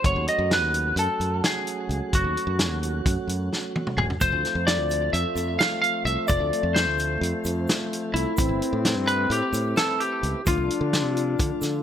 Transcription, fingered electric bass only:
0.04 0.14 F#1 medium
0.16 0.26 D#2 medium
0.39 0.62 F#2 medium
0.62 0.92 D#2 medium
0.96 1.07 F#2 medium
1.20 1.40 F#2 medium
1.89 1.99 C#2 medium
2.13 2.23 F#1 medium
2.24 2.34 D#2 medium
2.47 2.69 F#2 medium
2.69 3.01 D#2 medium
3.06 3.16 F#2 loud
3.28 3.48 F#2 medium
3.97 4.08 E1 medium
4.21 4.31 F1 medium
4.32 4.43 D2 medium
4.55 4.78 F2 medium
4.78 5.09 D2 medium
5.13 5.24 F2 loud
5.35 5.56 F2 medium
6.05 6.16 C2 medium
6.30 6.39 F1 medium
6.39 6.50 D2 medium
6.63 6.86 F2 medium
6.86 7.18 D2 medium
7.21 7.32 F2 loud
7.45 7.66 F2 medium
8.14 8.24 C2 medium
8.38 8.48 A1 medium
8.49 8.60 G1 medium
8.73 8.95 A2 medium
8.95 9.26 G2 medium
9.30 9.40 A2 loud
9.53 9.74 A2 medium
10.23 10.33 C#2 medium
10.47 10.57 D2 medium
10.57 10.68 C2 medium
10.81 11.04 D3 medium
11.04 11.34 C3 medium
11.40 11.49 D3 loud
11.62 11.82 D3 medium

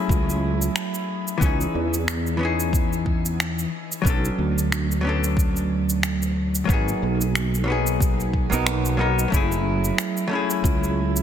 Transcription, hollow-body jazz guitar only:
0.00 1.36 F#3 medium
0.00 1.37 A3 medium
0.00 1.38 C#4 medium
0.00 1.39 E4 medium
0.00 1.40 G#4 medium
1.38 2.35 E3 medium
1.38 2.36 B3 medium
1.42 2.37 C#4 medium
1.42 2.38 D#4 medium
1.42 2.39 G#4 medium
2.37 3.69 E3 medium
2.37 3.70 B3 medium
2.37 3.71 C#4 medium
2.43 3.72 D#4 medium
2.43 3.73 G#4 medium
4.02 4.99 F#3 medium
4.02 5.00 B3 medium
4.06 5.01 C#4 medium
4.06 5.02 D4 medium
4.10 5.03 A4 medium
5.01 6.64 F#3 medium
5.01 6.65 B3 medium
5.01 6.66 C#4 medium
5.07 6.67 D4 medium
5.07 6.68 A4 medium
6.65 7.63 F#3 medium
6.65 7.64 A#3 medium
6.70 7.65 B3 medium
6.70 7.66 D#4 medium
6.70 7.67 G#4 medium
7.64 8.46 F#3 medium
7.64 8.47 A#3 medium
7.64 8.48 B3 medium
7.70 8.49 D#4 medium
7.70 8.50 G#4 medium
8.50 8.95 F#3 medium
8.50 8.96 A#3 medium
8.50 8.96 B3 medium
8.50 8.97 D#4 medium
8.54 8.97 A#4 medium
8.97 9.27 F#3 medium
8.97 9.28 A#3 medium
8.97 9.29 B3 medium
8.97 9.29 D#4 medium
8.97 9.30 A#4 medium
9.28 10.26 F#3 medium
9.28 10.27 A3 medium
9.32 10.28 C#4 medium
9.32 10.29 E4 medium
9.36 10.30 G#4 medium
10.27 11.22 F#3 medium
10.27 11.22 A3 medium
10.27 11.22 C#4 medium
10.33 11.22 E4 medium
10.33 11.22 G#4 medium

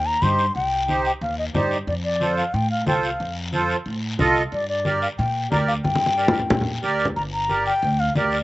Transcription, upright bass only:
0.00 0.15 D#2 loud
0.22 0.49 G2 medium
0.55 1.08 C2 medium
1.21 1.48 D#2 loud
1.55 1.81 G2 medium
1.87 2.40 F2 medium
2.54 2.80 A2 loud
2.87 3.13 C2 medium
3.20 3.73 F2 medium
3.86 4.12 A2 medium
4.19 4.46 C2 medium
4.52 5.05 G2 medium
5.19 5.45 A#2 loud
5.52 5.78 D2 medium
5.85 6.37 G2 medium
6.51 6.77 A#2 loud
6.84 7.10 D2 medium
7.16 7.69 G1 medium
7.83 8.09 D2 loud
8.16 8.42 D2 medium

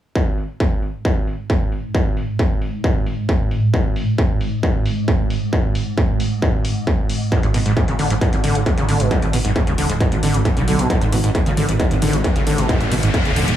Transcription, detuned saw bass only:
7.43 7.51 G#1 medium
7.54 7.62 G#1 loud
7.66 7.73 G#1 medium
7.88 7.96 G#1 medium
7.99 8.07 G#1 loud
8.10 8.18 G#1 medium
8.33 8.40 G#1 medium
8.44 8.52 G#1 medium
8.55 8.63 G#1 medium
8.78 8.85 G#1 medium
8.89 8.96 G#1 loud
9.00 9.07 G#1 medium
9.22 9.30 G#1 medium
9.33 9.41 G#1 loud
9.45 9.52 G#1 medium
9.67 9.75 D#1 medium
9.78 9.86 D#1 loud
9.90 9.97 D#1 medium
10.12 10.19 G#1 medium
10.23 10.31 G#1 loud
10.34 10.42 G#1 medium
10.57 10.64 B1 medium
10.68 10.75 B1 loud
10.79 10.87 B1 medium
11.01 11.09 G#1 medium
11.12 11.20 G#1 loud
11.24 11.31 G#1 medium
11.46 11.54 G#1 medium
11.57 11.65 G#1 loud
11.69 11.76 G#1 medium
11.91 11.99 G#1 medium
12.02 12.10 G#1 loud
12.13 12.21 G#1 medium
12.36 12.43 G#1 medium
12.47 12.55 G#1 medium
12.58 12.66 G#1 medium
12.81 12.88 G#1 medium
12.91 12.99 G#1 medium
13.03 13.10 G#1 medium
13.25 13.33 D#1 medium
13.36 13.44 D#1 loud
13.48 13.55 D#1 medium

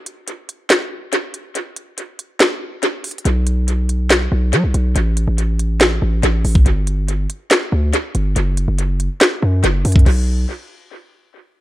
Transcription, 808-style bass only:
3.25 4.28 B1 loud
4.32 4.55 B1 loud
4.53 4.65 F#3 loud
4.64 4.74 B1 loud
4.74 4.95 B1 loud
4.96 5.26 A1 loud
5.28 5.99 A1 loud
6.02 6.22 A1 loud
6.23 6.44 A1 loud
6.45 6.65 A1 loud
6.66 7.27 G1 loud
7.72 7.93 D2 loud
8.15 8.35 G1 loud
8.36 8.67 F#1 loud
8.68 9.09 F#1 loud
9.42 9.63 F#2 loud
9.64 9.84 F#1 loud
9.85 10.05 F#2 loud
10.06 10.46 B1 loud

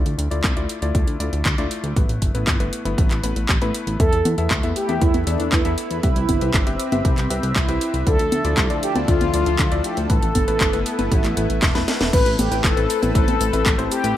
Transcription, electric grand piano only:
0.00 0.28 A3 medium
0.00 0.28 E4 medium
0.00 0.28 F4 medium
0.00 0.28 D5 medium
0.31 0.53 A3 medium
0.31 0.53 E4 medium
0.31 0.53 F4 medium
0.31 0.53 D5 loud
0.56 0.79 A3 medium
0.56 0.79 E4 medium
0.56 0.79 F4 medium
0.56 0.79 D5 loud
0.82 1.17 A3 medium
0.82 1.17 E4 medium
0.82 1.17 F4 medium
0.82 1.17 D5 loud
1.20 1.41 A3 medium
1.20 1.41 E4 medium
1.20 1.41 F4 medium
1.20 1.41 D5 medium
1.58 1.93 A3 loud
1.58 1.93 E4 medium
1.58 1.93 F4 medium
1.58 1.93 D5 loud
1.96 2.32 A3 medium
1.96 2.31 B3 medium
1.96 2.31 E4 medium
1.96 2.31 B4 medium
2.34 2.57 A3 medium
2.34 2.57 B3 medium
2.34 2.57 E4 medium
2.34 2.57 B4 medium
2.60 2.82 A3 medium
2.60 2.82 B3 medium
2.60 2.82 E4 medium
2.60 2.82 B4 medium
2.85 3.20 A3 medium
2.85 3.20 B3 medium
2.85 3.20 E4 medium
2.85 3.20 B4 loud
3.24 3.45 A3 medium
3.24 3.45 B3 medium
3.24 3.45 E4 medium
3.24 3.45 B4 loud
3.62 3.97 A3 loud
3.62 3.97 B3 medium
3.62 3.97 E4 medium
3.62 3.97 B4 loud
4.00 4.35 B3 medium
4.00 4.35 E4 medium
4.00 4.35 A4 medium
4.00 4.35 E5 medium
4.38 4.60 B3 medium
4.38 4.60 E4 medium
4.38 4.60 A4 medium
4.38 4.60 E5 loud
4.63 4.86 B3 medium
4.63 4.86 E4 medium
4.63 4.86 A4 medium
4.63 4.86 E5 medium
4.89 5.24 B3 medium
4.89 5.24 E4 medium
4.89 5.24 A4 medium
4.89 5.24 E5 loud
5.27 5.48 B3 medium
5.27 5.48 E4 medium
5.27 5.48 A4 medium
5.27 5.48 E5 medium
5.65 6.00 B3 loud
5.65 6.00 E4 medium
5.65 6.00 A4 medium
5.65 6.00 E5 loud
6.03 6.38 C4 medium
6.03 6.38 G4 medium
6.03 6.38 B4 medium
6.03 6.38 E5 medium
6.41 6.64 C4 medium
6.41 6.64 G4 medium
6.41 6.64 B4 medium
6.41 6.64 E5 medium
6.67 6.89 C4 medium
6.67 6.89 G4 medium
6.67 6.89 B4 medium
6.67 6.89 E5 loud
6.92 7.27 C4 medium
6.92 7.27 G4 medium
6.92 7.27 B4 medium
6.92 7.27 E5 loud
7.30 7.51 C4 medium
7.30 7.51 G4 medium
7.30 7.51 B4 medium
7.30 7.52 E5 loud
7.68 8.03 C4 loud
7.68 8.03 G4 medium
7.68 8.03 B4 medium
7.68 8.03 E5 loud
8.06 8.42 A3 medium
8.06 8.42 E4 medium
8.06 8.42 F4 medium
8.06 8.42 D5 medium
8.45 8.67 A3 medium
8.45 8.67 E4 medium
8.45 8.67 F4 medium
8.45 8.67 D5 loud
8.70 8.92 A3 medium
8.70 8.92 E4 medium
8.70 8.92 F4 medium
8.70 8.92 D5 loud
8.95 9.31 A3 medium
8.95 9.31 E4 medium
8.95 9.31 F4 medium
8.95 9.31 D5 loud
9.34 9.55 A3 medium
9.34 9.55 E4 medium
9.34 9.55 F4 medium
9.34 9.55 D5 medium
9.71 10.07 A3 loud
9.71 10.07 E4 medium
9.71 10.07 F4 medium
9.71 10.07 D5 loud
10.10 10.45 A3 medium
10.10 10.45 B3 medium
10.10 10.45 E4 medium
10.10 10.45 B4 medium
10.48 10.70 A3 medium
10.48 10.70 B3 medium
10.48 10.70 E4 medium
10.48 10.70 B4 medium
10.73 10.96 A3 medium
10.73 10.96 B3 medium
10.73 10.96 E4 medium
10.73 10.96 B4 loud
10.99 11.34 A3 medium
10.99 11.34 B3 medium
10.99 11.34 E4 medium
10.99 11.34 B4 loud
11.37 11.58 A3 medium
11.37 11.58 B3 medium
11.37 11.58 E4 medium
11.37 11.58 B4 loud
11.75 12.10 A3 loud
11.75 12.10 B3 loud
11.75 12.10 E4 medium
11.75 12.10 B4 loud
12.13 12.48 A3 medium
12.13 12.48 C4 medium
12.13 12.48 E4 medium
12.13 12.48 B4 medium
12.51 12.74 A3 medium
12.51 12.74 C4 medium
12.51 12.74 E4 medium
12.51 12.74 B4 medium
12.77 12.99 A3 medium
12.77 12.99 C4 medium
12.77 12.99 E4 medium
12.77 12.99 B4 loud
13.02 13.37 A3 medium
13.02 13.37 C4 medium
13.02 13.37 E4 medium
13.02 13.37 B4 loud
13.53 13.75 A3 medium
13.53 13.75 C4 medium
13.53 13.75 E4 medium
13.53 13.75 B4 loud
13.78 14.01 A3 medium
13.78 14.01 C4 medium
13.78 14.01 E4 medium
13.78 14.01 C5 loud
14.04 14.14 A3 medium
14.04 14.14 C4 medium
14.04 14.14 E4 medium
14.04 14.14 B4 loud

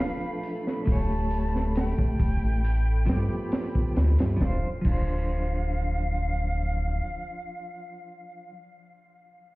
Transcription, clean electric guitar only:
0.00 0.82 F3 loud
0.00 0.84 D4 medium
0.00 0.85 B4 loud
0.86 2.61 A3 loud
0.86 2.63 G4 medium
0.92 2.64 C#5 loud
3.06 4.35 F3 loud
3.06 4.36 B3 medium
3.13 4.38 G4 loud
4.37 4.64 F3 medium
4.41 4.67 D4 medium
4.46 4.69 C5 medium
4.81 8.51 F3 medium
4.87 8.56 D4 medium
4.91 8.61 C5 medium

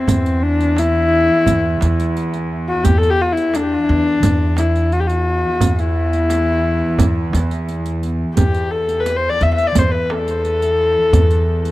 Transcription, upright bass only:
0.08 1.28 E2 medium
1.47 1.76 E2 medium
1.82 2.71 E2 medium
2.85 3.75 E2 medium
3.89 4.19 E2 medium
4.24 5.43 E2 medium
5.61 6.81 E2 medium
6.99 7.29 E2 medium
7.33 8.23 E2 medium
8.38 9.27 E2 medium
9.41 9.71 E2 medium
9.75 10.95 E2 medium
11.13 11.71 E2 medium

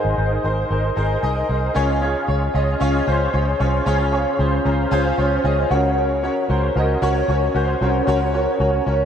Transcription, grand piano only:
0.00 0.14 G#2 medium
0.00 0.17 D#4 loud
0.00 0.17 G#4 medium
0.00 0.18 A#4 medium
0.00 0.18 C5 loud
0.00 1.24 D#5 loud
0.17 0.34 D#4 medium
0.17 0.34 G#4 medium
0.17 0.35 A#4 medium
0.17 0.35 C5 medium
0.43 0.60 D#4 medium
0.43 0.61 G#4 medium
0.43 0.61 A#4 medium
0.43 0.61 C5 medium
0.70 0.87 D#4 medium
0.70 0.87 G#4 medium
0.70 0.87 A#4 medium
0.70 0.87 C5 medium
0.96 1.13 D#4 loud
0.96 1.13 G#4 medium
0.96 1.13 A#4 medium
0.96 1.14 C5 loud
1.22 1.39 D#4 loud
1.22 1.40 G#4 medium
1.22 1.40 A#4 medium
1.22 1.40 D#5 loud
1.48 1.66 D#4 medium
1.48 1.66 G#4 medium
1.48 1.66 A#4 medium
1.48 1.66 C5 medium
1.74 2.50 C#3 medium
1.74 1.92 C#4 loud
1.74 1.92 F4 medium
1.74 1.92 G#4 loud
1.74 1.92 C#5 loud
2.01 2.18 C#4 medium
2.01 2.18 F4 medium
2.01 2.19 G#4 medium
2.01 2.19 C#5 medium
2.27 2.45 C#4 medium
2.27 2.45 F4 medium
2.27 2.45 G#4 medium
2.27 2.45 C#5 medium
2.54 2.71 C#4 medium
2.54 2.71 F4 medium
2.54 2.71 G#4 medium
2.54 2.71 D#5 medium
2.80 2.97 C#4 loud
2.80 2.97 F4 loud
2.80 2.98 G#4 loud
2.80 2.98 C#5 loud
3.06 3.23 C#4 medium
3.06 3.24 F4 medium
3.06 3.24 G#4 medium
3.06 3.24 C5 medium
3.32 3.50 C#4 medium
3.32 3.50 F4 medium
3.32 3.50 G#4 medium
3.32 3.50 C#5 medium
3.59 3.76 C#4 medium
3.59 3.77 F4 medium
3.59 3.77 G#4 medium
3.59 3.77 C#5 loud
3.86 4.61 C#3 medium
3.86 4.03 C#4 loud
3.86 4.03 F4 loud
3.86 4.03 G#4 loud
3.86 4.03 C#5 loud
4.12 4.29 C#4 medium
4.12 4.29 F4 medium
4.12 4.29 G#4 medium
4.12 4.30 C#5 medium
4.38 4.55 C#4 medium
4.38 4.55 F4 medium
4.38 4.56 G#4 medium
4.38 4.56 C5 medium
4.65 4.82 C#4 medium
4.65 4.82 F4 medium
4.65 4.82 G#4 medium
4.65 4.82 C5 loud
4.65 4.90 A#5 medium
4.91 5.08 C#4 loud
4.91 5.08 F4 loud
4.91 5.08 G#4 loud
4.91 5.09 C5 loud
4.91 5.04 G#5 medium
5.05 5.42 F5 medium
5.17 5.34 C#4 medium
5.17 5.34 F4 medium
5.17 5.35 G#4 medium
5.17 5.35 C#5 medium
5.44 5.61 C#4 medium
5.44 5.61 F4 medium
5.44 5.61 G#4 medium
5.44 5.61 D#5 loud
5.44 5.69 F5 medium
5.70 6.46 C#3 medium
5.70 6.12 C#4 medium
5.70 6.13 F#4 medium
5.70 6.13 A#4 medium
5.70 6.13 C#5 loud
5.70 5.95 F#5 medium
6.23 6.39 C#4 medium
6.23 6.40 F#4 medium
6.23 6.40 A#4 medium
6.23 6.40 C#5 medium
6.49 6.66 C#4 medium
6.49 6.66 F#4 medium
6.49 6.66 A#4 medium
6.49 6.66 C5 medium
6.76 6.92 C#4 medium
6.76 6.92 F#4 medium
6.76 6.93 A#4 medium
6.76 6.93 D#5 medium
7.02 7.19 C#4 loud
7.02 7.19 F#4 loud
7.02 7.19 A#4 loud
7.02 7.19 C#5 loud
7.28 7.45 C#4 medium
7.28 7.45 F#4 medium
7.28 7.45 A#4 medium
7.28 7.46 C#5 medium
7.54 7.71 C#4 medium
7.54 7.71 F#4 medium
7.54 7.72 A#4 medium
7.54 7.72 C5 medium
7.81 8.56 C#3 medium
7.81 7.98 C#4 medium
7.81 7.98 F#4 medium
7.81 7.98 A#4 medium
7.81 7.98 C#5 loud
8.07 8.24 C#4 loud
8.07 8.24 F#4 loud
8.07 8.24 A#4 loud
8.07 8.25 C#5 loud
8.33 8.50 C#4 medium
8.33 8.50 F#4 medium
8.33 8.50 A#4 medium
8.33 8.51 C#5 medium
8.59 8.76 C#4 medium
8.59 8.77 F#4 medium
8.59 8.77 A#4 medium
8.59 8.77 C#5 medium
8.86 9.03 C#4 medium
8.86 9.03 F#4 medium
8.86 9.03 A#4 medium
8.86 9.03 C#5 medium

